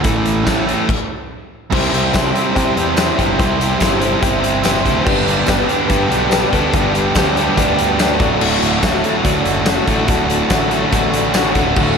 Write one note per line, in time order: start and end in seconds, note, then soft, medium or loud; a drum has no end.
0.02 0.72 A1 medium
0.02 0.43 A2 medium
0.02 0.44 E3 medium
0.02 0.44 A3 loud
0.02 0.87 A3 medium
0.02 0.87 E4 medium
0.02 0.87 C#5 medium
0.02 kick loud
0.02 closed hi-hat loud
0.26 closed hi-hat medium
0.44 0.64 A2 medium
0.44 0.65 E3 medium
0.44 0.66 A3 medium
0.44 kick medium
0.44 snare loud
0.44 closed hi-hat loud
0.44 tambourine loud
0.66 0.86 A2 medium
0.66 0.86 E3 medium
0.66 0.86 A3 loud
0.66 closed hi-hat medium
0.89 kick loud
0.89 crash loud
1.70 1.89 C2 medium
1.70 2.12 C3 medium
1.70 2.12 G3 loud
1.70 1.93 C4 loud
1.70 1.92 E4 loud
1.70 2.05 G4 medium
1.70 1.90 G4 loud
1.70 2.05 C5 medium
1.70 1.90 C5 loud
1.70 2.05 E5 medium
1.70 2.05 G5 medium
1.70 kick loud
1.70 crash loud
1.75 5.03 G3 medium
1.75 5.05 E4 medium
1.75 5.04 C5 medium
1.90 2.09 C2 medium
1.90 2.13 C4 medium
1.90 2.13 E4 medium
1.90 2.14 G4 medium
1.90 2.14 C5 medium
1.90 closed hi-hat medium
1.95 2.16 G4 medium
2.12 2.31 C2 medium
2.12 2.80 C3 medium
2.12 2.78 G3 medium
2.12 2.35 C4 loud
2.12 2.34 E4 medium
2.12 2.46 G4 medium
2.12 2.33 G4 medium
2.12 2.47 C5 medium
2.12 2.32 C5 loud
2.12 2.47 E5 medium
2.12 2.47 G5 medium
2.12 kick medium
2.12 snare loud
2.12 closed hi-hat loud
2.12 tambourine loud
2.32 2.52 C4 medium
2.32 2.54 E4 medium
2.32 2.56 G4 medium
2.32 2.56 C5 medium
2.32 closed hi-hat medium
2.53 3.18 C3 medium
2.53 2.73 C3 medium
2.53 3.39 G3 medium
2.53 2.77 C4 medium
2.53 2.76 E4 medium
2.53 2.88 G4 medium
2.53 2.76 G4 medium
2.53 2.88 C5 medium
2.53 2.74 C5 loud
2.53 2.88 E5 medium
2.53 2.89 G5 loud
2.53 kick medium
2.53 closed hi-hat loud
2.75 3.10 E2 loud
2.75 3.37 G3 medium
2.75 2.94 C4 medium
2.75 2.95 E4 medium
2.75 2.97 G4 loud
2.75 2.97 C5 medium
2.75 closed hi-hat medium
2.80 3.20 C3 medium
2.95 3.19 C4 medium
2.95 3.19 E4 medium
2.95 3.30 G4 medium
2.95 3.18 G4 medium
2.95 3.30 C5 medium
2.95 3.16 C5 medium
2.95 3.31 E5 medium
2.95 3.31 G5 medium
2.95 snare loud
2.95 closed hi-hat loud
2.95 tambourine loud
3.18 3.41 G1 medium
3.18 3.38 C4 medium
3.18 3.38 E4 medium
3.18 3.39 G4 medium
3.18 3.38 C5 medium
3.18 kick medium
3.18 closed hi-hat medium
3.36 3.73 C2 loud
3.36 3.77 C3 loud
3.36 3.78 G3 loud
3.36 3.60 C4 loud
3.36 3.59 E4 loud
3.36 3.72 G4 medium
3.36 3.58 G4 loud
3.36 3.72 C5 medium
3.36 3.56 C5 loud
3.36 3.72 E5 medium
3.36 3.72 G5 medium
3.36 kick loud
3.40 closed hi-hat loud
3.57 3.78 C4 medium
3.57 3.79 E4 medium
3.57 3.80 G4 medium
3.57 3.80 C5 medium
3.61 closed hi-hat medium
3.78 4.15 G1 medium
3.78 4.21 C3 loud
3.78 4.42 G3 loud
3.78 4.02 C4 loud
3.78 4.00 E4 loud
3.78 4.13 G4 medium
3.78 4.00 G4 loud
3.78 4.13 C5 medium
3.78 3.98 C5 loud
3.78 4.13 E5 medium
3.78 4.14 G5 medium
3.78 kick medium
3.78 closed hi-hat loud
3.78 tambourine loud
3.82 snare loud
3.99 4.19 C4 medium
3.99 4.20 E4 medium
3.99 4.22 G4 medium
3.99 4.21 C5 medium
3.99 closed hi-hat medium
4.20 4.87 G1 medium
4.20 4.85 C3 medium
4.20 5.08 G3 loud
4.20 4.41 C4 medium
4.20 4.40 E4 medium
4.20 4.55 G4 medium
4.20 4.41 G4 medium
4.20 4.55 C5 medium
4.20 4.39 C5 medium
4.20 4.56 E5 medium
4.20 4.56 G5 loud
4.20 kick loud
4.20 closed hi-hat loud
4.40 4.85 C3 medium
4.40 5.04 G3 medium
4.40 4.61 C4 medium
4.40 4.63 E4 loud
4.40 4.64 G4 medium
4.40 4.65 C5 medium
4.40 closed hi-hat medium
4.62 4.85 C4 medium
4.62 4.83 E4 medium
4.62 4.97 G4 medium
4.62 4.84 G4 medium
4.62 4.98 C5 medium
4.62 4.98 E5 medium
4.62 4.98 G5 medium
4.62 snare loud
4.62 closed hi-hat loud
4.62 tambourine loud
4.66 4.82 C5 medium
4.83 5.02 D2 medium
4.83 5.04 C4 medium
4.83 5.04 E4 medium
4.83 5.06 G4 medium
4.83 5.03 C5 medium
4.83 kick medium
4.83 closed hi-hat medium
5.04 5.23 G1 loud
5.04 5.45 G2 loud
5.04 5.45 D3 loud
5.04 8.16 G3 medium
5.04 5.28 G3 loud
5.04 5.27 B3 loud
5.04 8.16 D4 medium
5.04 5.26 D4 loud
5.04 5.38 G4 medium
5.04 5.24 G4 loud
5.04 8.16 B4 medium
5.04 5.39 B4 medium
5.04 5.39 D5 medium
5.04 5.39 G5 loud
5.04 kick loud
5.04 crash loud
5.10 5.26 G4 medium
5.25 5.43 G1 loud
5.25 5.47 G3 medium
5.25 5.47 B3 medium
5.25 5.48 D4 medium
5.25 5.48 G4 medium
5.25 closed hi-hat medium
5.46 5.65 G1 medium
5.46 5.88 G2 medium
5.46 5.89 D3 loud
5.46 5.70 G3 loud
5.46 5.70 B3 loud
5.46 5.69 D4 loud
5.46 5.81 G4 medium
5.46 5.81 B4 medium
5.46 5.81 D5 medium
5.46 5.81 G5 medium
5.46 kick medium
5.46 closed hi-hat loud
5.46 tambourine medium
5.48 5.67 G4 loud
5.48 snare loud
5.48 tambourine loud
5.68 5.86 G3 medium
5.68 5.87 B3 medium
5.68 5.89 D4 medium
5.68 5.90 G4 medium
5.68 closed hi-hat medium
5.87 6.52 G2 medium
5.87 6.07 G2 medium
5.87 6.52 D3 medium
5.87 6.10 G3 medium
5.87 6.10 B3 medium
5.87 6.09 D4 medium
5.87 6.22 G4 medium
5.87 6.22 B4 medium
5.87 6.23 D5 medium
5.87 6.23 G5 medium
5.87 kick medium
5.87 closed hi-hat loud
5.91 6.30 G3 loud
5.91 6.07 G4 medium
6.09 6.44 B1 medium
6.09 6.53 D3 medium
6.09 6.29 G3 medium
6.09 6.29 B3 medium
6.09 6.32 D4 medium
6.09 6.32 G4 medium
6.09 closed hi-hat medium
6.13 6.53 G2 medium
6.30 6.53 G3 medium
6.30 6.52 B3 medium
6.30 6.52 D4 medium
6.30 6.64 G4 medium
6.30 6.50 G4 medium
6.30 6.64 B4 medium
6.30 6.64 D5 medium
6.30 6.65 G5 loud
6.30 snare loud
6.30 closed hi-hat loud
6.30 tambourine medium
6.30 tambourine loud
6.51 6.75 D2 loud
6.51 6.73 G3 medium
6.51 6.73 B3 medium
6.51 6.75 D4 medium
6.51 6.75 G4 medium
6.51 kick medium
6.51 closed hi-hat medium
6.72 7.07 G1 loud
6.72 7.13 G2 medium
6.72 7.14 D3 loud
6.72 6.95 G3 loud
6.72 6.94 B3 loud
6.72 6.94 D4 loud
6.72 7.07 G4 medium
6.72 6.92 G4 loud
6.72 7.07 B4 medium
6.72 7.07 D5 medium
6.72 7.07 G5 loud
6.72 kick loud
6.72 closed hi-hat loud
6.93 7.15 G3 medium
6.93 7.15 B3 medium
6.93 7.17 D4 medium
6.93 7.16 G4 medium
6.93 closed hi-hat medium
7.14 7.49 D2 medium
7.14 7.56 G2 loud
7.14 7.57 D3 medium
7.14 7.36 G3 loud
7.14 7.35 B3 loud
7.14 7.35 D4 loud
7.14 7.49 G4 medium
7.14 7.32 G4 loud
7.14 7.49 B4 medium
7.14 7.49 D5 medium
7.14 7.49 G5 medium
7.14 kick medium
7.14 snare loud
7.14 closed hi-hat loud
7.14 tambourine medium
7.14 tambourine loud
7.33 7.56 B3 medium
7.33 7.57 D4 medium
7.33 7.57 G4 medium
7.33 closed hi-hat medium
7.38 7.54 G3 medium
7.55 8.21 D2 loud
7.55 8.18 G2 medium
7.55 8.18 D3 medium
7.55 7.78 G3 medium
7.55 7.78 B3 medium
7.55 7.78 D4 medium
7.55 7.91 G4 medium
7.55 7.76 G4 loud
7.55 7.91 B4 medium
7.55 7.91 D5 medium
7.55 kick medium
7.55 closed hi-hat loud
7.59 7.91 G5 medium
7.77 8.20 G2 medium
7.77 8.19 D3 medium
7.77 7.98 G3 medium
7.77 7.99 B3 medium
7.77 8.01 D4 medium
7.77 8.01 G4 medium
7.77 closed hi-hat medium
7.98 8.19 G3 medium
7.98 8.19 B3 medium
7.98 11.51 D4 medium
7.98 8.19 G4 medium
7.98 8.20 B4 medium
7.98 8.19 D5 medium
7.98 8.20 G5 medium
7.98 snare loud
7.98 closed hi-hat loud
7.98 tambourine medium
7.98 tambourine loud
8.19 8.37 D1 medium
8.19 8.38 D2 medium
8.19 8.39 A2 medium
8.19 8.40 D3 medium
8.19 11.52 F#3 medium
8.19 8.42 A3 medium
8.19 11.52 D4 medium
8.19 8.43 F#4 medium
8.19 8.70 F#4 loud
8.19 8.70 A4 medium
8.19 11.52 A4 medium
8.19 8.70 D5 medium
8.19 8.70 F#5 loud
8.19 kick loud
8.19 closed hi-hat medium
8.39 8.57 D1 medium
8.39 8.78 D2 medium
8.39 8.78 A2 loud
8.39 8.63 D3 loud
8.39 8.61 A3 loud
8.39 crash loud
8.43 8.59 F#4 loud
8.60 8.78 D1 loud
8.60 8.80 D3 medium
8.60 8.80 A3 medium
8.60 8.81 F#4 medium
8.60 closed hi-hat medium
8.78 9.45 D2 medium
8.78 9.19 A2 loud
8.78 9.03 D3 loud
8.78 9.02 A3 loud
8.78 9.00 F#4 loud
8.83 9.00 D1 medium
8.83 9.16 F#4 medium
8.83 9.17 A4 medium
8.83 9.17 D5 medium
8.83 9.17 E5 medium
8.83 kick medium
8.83 snare loud
8.83 closed hi-hat loud
8.83 tambourine medium
8.83 tambourine loud
9.00 9.22 D3 medium
9.00 9.23 A3 medium
9.00 9.24 F#4 medium
9.00 closed hi-hat medium
9.20 10.08 D2 medium
9.20 9.43 A2 medium
9.20 9.43 D3 medium
9.20 9.42 A3 loud
9.20 9.41 F#4 loud
9.20 9.58 F#4 medium
9.25 9.42 D2 medium
9.25 9.66 A2 medium
9.25 9.58 A4 medium
9.25 9.58 D5 medium
9.25 9.59 F#5 loud
9.25 kick loud
9.25 closed hi-hat loud
9.42 9.79 F#1 loud
9.42 10.05 D2 medium
9.42 9.61 A2 medium
9.42 9.63 D3 medium
9.42 9.64 A3 medium
9.42 9.65 F#4 medium
9.42 closed hi-hat medium
9.62 10.05 A2 medium
9.62 9.88 D3 medium
9.62 9.86 A3 medium
9.62 9.85 F#4 medium
9.62 10.00 F#4 medium
9.66 10.08 A2 medium
9.66 9.92 D3 medium
9.66 9.90 A3 medium
9.66 10.00 A4 medium
9.66 10.00 D5 medium
9.66 10.00 F#5 loud
9.66 snare loud
9.66 closed hi-hat medium
9.66 tambourine loud
9.66 tambourine medium
9.85 10.10 A1 medium
9.85 10.07 D3 medium
9.85 10.07 A3 medium
9.85 10.08 F#4 medium
9.85 kick medium
9.85 closed hi-hat medium
9.89 10.10 A3 medium
9.89 10.12 F#4 medium
10.05 10.42 D1 loud
10.05 10.47 D2 loud
10.05 10.48 A2 loud
10.05 10.29 D3 medium
10.05 10.28 A3 loud
10.05 10.42 F#4 medium
10.05 10.26 F#4 loud
10.05 10.42 A4 medium
10.05 10.42 D5 medium
10.05 10.42 A5 loud
10.05 kick loud
10.05 closed hi-hat loud
10.26 10.48 D3 medium
10.26 10.50 A3 medium
10.26 10.50 F#4 medium
10.26 closed hi-hat medium
10.47 10.84 A1 medium
10.47 11.13 D2 loud
10.47 10.89 A2 loud
10.47 10.72 D3 loud
10.47 10.71 A3 loud
10.47 10.84 F#4 medium
10.47 10.69 F#4 loud
10.47 10.84 A4 medium
10.47 10.84 D5 medium
10.47 10.84 F#5 medium
10.47 kick medium
10.47 snare loud
10.47 closed hi-hat loud
10.47 tambourine loud
10.51 tambourine medium
10.69 10.91 D3 medium
10.69 10.92 A3 medium
10.69 10.93 F#4 medium
10.69 closed hi-hat medium
10.90 11.56 A1 loud
10.90 11.76 D2 medium
10.90 11.12 A2 medium
10.90 11.13 D3 medium
10.90 11.11 A3 loud
10.90 11.10 F#4 medium
10.90 11.27 F#4 medium
10.90 11.27 A4 medium
10.90 kick medium
10.90 closed hi-hat loud
10.94 11.27 D5 medium
10.94 11.27 F#5 loud
11.11 11.74 D2 medium
11.11 11.32 A2 medium
11.11 11.34 D3 medium
11.11 11.36 A3 medium
11.11 11.37 F#4 medium
11.11 closed hi-hat medium
11.33 11.75 A2 medium
11.33 11.57 D3 medium
11.33 11.56 A3 medium
11.33 11.69 F#4 medium
11.33 11.69 A4 medium
11.33 11.69 D5 medium
11.33 11.69 F#5 loud
11.33 snare loud
11.33 closed hi-hat loud
11.33 tambourine loud
11.37 11.54 F#4 medium
11.55 11.72 D1 loud
11.55 11.76 D3 medium
11.55 11.77 A3 medium
11.55 11.98 D4 medium
11.55 11.78 F#4 medium
11.55 11.98 F#4 medium
11.55 11.98 A4 medium
11.55 kick medium
11.55 closed hi-hat medium
11.74 11.94 D1 loud
11.74 11.98 D2 loud
11.74 11.98 A2 loud
11.74 11.98 D3 loud
11.74 11.97 A3 medium
11.74 11.98 F#4 medium
11.74 11.95 F#4 loud
11.74 11.98 A4 medium
11.74 11.98 D5 medium
11.74 11.98 F#5 loud
11.74 kick loud
11.74 crash loud